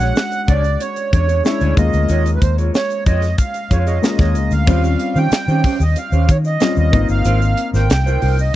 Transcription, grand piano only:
0, 0, Header, 1, 2, 480
1, 0, Start_track
1, 0, Tempo, 645161
1, 1557, Time_signature, 4, 2, 24, 8
1, 6365, End_track
2, 0, Start_track
2, 0, Title_t, "Grand piano"
2, 0, Program_c, 0, 0
2, 0, Control_c, 0, 64, 127
2, 0, Note_on_c, 0, 56, 74
2, 0, Note_on_c, 0, 61, 64
2, 0, Note_on_c, 0, 62, 64
2, 0, Note_on_c, 0, 66, 79
2, 238, Note_off_c, 0, 56, 0
2, 239, Note_off_c, 0, 61, 0
2, 242, Note_off_c, 0, 62, 0
2, 243, Note_off_c, 0, 66, 0
2, 1075, Note_on_c, 0, 56, 62
2, 1077, Note_on_c, 0, 61, 61
2, 1080, Note_on_c, 0, 62, 58
2, 1084, Note_on_c, 0, 64, 75
2, 1304, Note_off_c, 0, 56, 0
2, 1309, Note_off_c, 0, 61, 0
2, 1315, Note_on_c, 0, 56, 67
2, 1317, Note_on_c, 0, 58, 65
2, 1319, Note_off_c, 0, 62, 0
2, 1320, Note_on_c, 0, 61, 57
2, 1321, Note_off_c, 0, 64, 0
2, 1323, Note_on_c, 0, 65, 82
2, 1326, Control_c, 0, 64, 0
2, 1467, Control_c, 0, 64, 127
2, 2084, Note_off_c, 0, 56, 0
2, 2086, Note_off_c, 0, 58, 0
2, 2087, Note_off_c, 0, 61, 0
2, 2088, Note_off_c, 0, 65, 0
2, 2991, Note_on_c, 0, 56, 64
2, 2995, Note_on_c, 0, 58, 60
2, 2997, Note_on_c, 0, 61, 56
2, 3000, Note_on_c, 0, 65, 72
2, 3296, Note_off_c, 0, 56, 0
2, 3298, Note_off_c, 0, 58, 0
2, 3299, Note_off_c, 0, 61, 0
2, 3301, Note_off_c, 0, 65, 0
2, 3472, Note_on_c, 0, 55, 74
2, 3474, Note_on_c, 0, 60, 65
2, 3478, Note_on_c, 0, 61, 61
2, 3480, Note_on_c, 0, 65, 81
2, 3487, Control_c, 0, 64, 0
2, 3609, Control_c, 0, 64, 127
2, 4079, Note_off_c, 0, 55, 0
2, 4080, Note_off_c, 0, 60, 0
2, 4082, Note_off_c, 0, 61, 0
2, 4083, Note_off_c, 0, 65, 0
2, 4912, Note_on_c, 0, 55, 70
2, 4914, Note_on_c, 0, 60, 60
2, 4917, Note_on_c, 0, 61, 67
2, 4920, Note_on_c, 0, 65, 79
2, 5142, Note_off_c, 0, 60, 0
2, 5150, Note_off_c, 0, 65, 0
2, 5150, Note_on_c, 0, 58, 78
2, 5153, Note_on_c, 0, 60, 66
2, 5155, Note_off_c, 0, 55, 0
2, 5157, Note_on_c, 0, 63, 72
2, 5158, Note_off_c, 0, 61, 0
2, 5161, Note_on_c, 0, 65, 78
2, 5168, Control_c, 0, 64, 0
2, 5289, Control_c, 0, 64, 127
2, 5922, Note_off_c, 0, 58, 0
2, 5923, Note_off_c, 0, 60, 0
2, 5925, Note_off_c, 0, 63, 0
2, 5927, Note_off_c, 0, 65, 0
2, 6365, End_track
0, 0, End_of_file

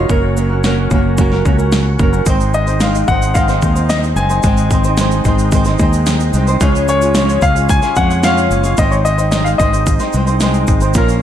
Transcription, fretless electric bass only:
0, 0, Header, 1, 2, 480
1, 0, Start_track
1, 0, Tempo, 542495
1, 85, Time_signature, 4, 2, 24, 8
1, 9927, End_track
2, 0, Start_track
2, 0, Title_t, "Fretless electric bass"
2, 0, Program_c, 0, 35
2, 85, Note_on_c, 0, 30, 95
2, 770, Note_off_c, 0, 30, 0
2, 807, Note_on_c, 0, 30, 99
2, 1251, Note_off_c, 0, 30, 0
2, 1288, Note_on_c, 0, 37, 85
2, 1732, Note_off_c, 0, 37, 0
2, 1766, Note_on_c, 0, 30, 96
2, 1987, Note_off_c, 0, 30, 0
2, 2000, Note_on_c, 0, 32, 87
2, 2689, Note_off_c, 0, 32, 0
2, 2727, Note_on_c, 0, 32, 91
2, 3172, Note_off_c, 0, 32, 0
2, 3205, Note_on_c, 0, 39, 91
2, 3651, Note_off_c, 0, 39, 0
2, 3680, Note_on_c, 0, 30, 100
2, 3904, Note_off_c, 0, 30, 0
2, 3927, Note_on_c, 0, 32, 109
2, 4612, Note_off_c, 0, 32, 0
2, 4646, Note_on_c, 0, 32, 110
2, 5092, Note_off_c, 0, 32, 0
2, 5127, Note_on_c, 0, 39, 91
2, 5572, Note_off_c, 0, 39, 0
2, 5606, Note_on_c, 0, 36, 95
2, 5828, Note_off_c, 0, 36, 0
2, 5848, Note_on_c, 0, 37, 99
2, 6532, Note_off_c, 0, 37, 0
2, 6565, Note_on_c, 0, 37, 100
2, 6897, Note_off_c, 0, 37, 0
2, 7050, Note_on_c, 0, 41, 92
2, 7493, Note_off_c, 0, 41, 0
2, 7525, Note_on_c, 0, 30, 102
2, 7747, Note_off_c, 0, 30, 0
2, 7768, Note_on_c, 0, 32, 110
2, 8452, Note_off_c, 0, 32, 0
2, 8489, Note_on_c, 0, 32, 99
2, 8819, Note_off_c, 0, 32, 0
2, 8974, Note_on_c, 0, 36, 86
2, 9416, Note_off_c, 0, 36, 0
2, 9451, Note_on_c, 0, 32, 104
2, 9670, Note_off_c, 0, 32, 0
2, 9689, Note_on_c, 0, 34, 112
2, 9927, Note_off_c, 0, 34, 0
2, 9927, End_track
0, 0, End_of_file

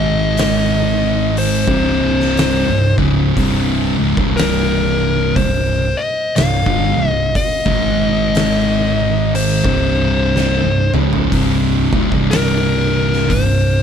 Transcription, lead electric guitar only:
0, 0, Header, 1, 2, 480
1, 0, Start_track
1, 0, Key_signature, -3, "minor"
1, 0, Tempo, 993377
1, 1630, Time_signature, 4, 2, 24, 8
1, 6681, End_track
2, 0, Start_track
2, 0, Title_t, "Lead electric guitar"
2, 0, Program_c, 0, 29
2, 0, Note_on_c, 0, 75, 101
2, 668, Note_on_c, 0, 72, 84
2, 695, Note_off_c, 0, 75, 0
2, 1425, Note_off_c, 0, 72, 0
2, 2111, Note_on_c, 0, 70, 78
2, 2589, Note_off_c, 0, 70, 0
2, 2591, Note_on_c, 0, 72, 98
2, 2886, Note_on_c, 0, 75, 90
2, 2895, Note_off_c, 0, 72, 0
2, 3073, Note_off_c, 0, 75, 0
2, 3075, Note_on_c, 0, 77, 102
2, 3423, Note_off_c, 0, 77, 0
2, 3423, Note_on_c, 0, 75, 102
2, 3555, Note_off_c, 0, 75, 0
2, 3557, Note_on_c, 0, 75, 100
2, 4520, Note_on_c, 0, 72, 83
2, 4544, Note_off_c, 0, 75, 0
2, 5270, Note_off_c, 0, 72, 0
2, 5948, Note_on_c, 0, 70, 90
2, 6427, Note_off_c, 0, 70, 0
2, 6429, Note_on_c, 0, 72, 94
2, 6681, Note_off_c, 0, 72, 0
2, 6681, End_track
0, 0, End_of_file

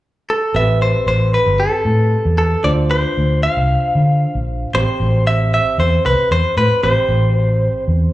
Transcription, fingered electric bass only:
0, 0, Header, 1, 2, 480
1, 0, Start_track
1, 0, Key_signature, 0, "minor"
1, 0, Tempo, 523560
1, 495, Time_signature, 4, 2, 24, 8
1, 7455, End_track
2, 0, Start_track
2, 0, Title_t, "Fingered electric bass"
2, 0, Program_c, 0, 33
2, 499, Note_on_c, 0, 33, 80
2, 861, Note_off_c, 0, 33, 0
2, 974, Note_on_c, 0, 33, 70
2, 1252, Note_off_c, 0, 33, 0
2, 1340, Note_on_c, 0, 31, 65
2, 1522, Note_off_c, 0, 31, 0
2, 1696, Note_on_c, 0, 45, 72
2, 1973, Note_off_c, 0, 45, 0
2, 2065, Note_on_c, 0, 40, 69
2, 2332, Note_off_c, 0, 40, 0
2, 2420, Note_on_c, 0, 38, 88
2, 2782, Note_off_c, 0, 38, 0
2, 2910, Note_on_c, 0, 38, 76
2, 3182, Note_off_c, 0, 38, 0
2, 3272, Note_on_c, 0, 36, 69
2, 3450, Note_off_c, 0, 36, 0
2, 3622, Note_on_c, 0, 50, 74
2, 3897, Note_off_c, 0, 50, 0
2, 3987, Note_on_c, 0, 34, 73
2, 4254, Note_off_c, 0, 34, 0
2, 4346, Note_on_c, 0, 33, 89
2, 4438, Note_off_c, 0, 33, 0
2, 4583, Note_on_c, 0, 33, 82
2, 5125, Note_off_c, 0, 33, 0
2, 5301, Note_on_c, 0, 40, 84
2, 5481, Note_off_c, 0, 40, 0
2, 5553, Note_on_c, 0, 36, 77
2, 5642, Note_off_c, 0, 36, 0
2, 5785, Note_on_c, 0, 40, 80
2, 5877, Note_off_c, 0, 40, 0
2, 6022, Note_on_c, 0, 45, 89
2, 6115, Note_off_c, 0, 45, 0
2, 6266, Note_on_c, 0, 33, 85
2, 6357, Note_off_c, 0, 33, 0
2, 6496, Note_on_c, 0, 33, 79
2, 7040, Note_off_c, 0, 33, 0
2, 7222, Note_on_c, 0, 40, 84
2, 7401, Note_off_c, 0, 40, 0
2, 7455, End_track
0, 0, End_of_file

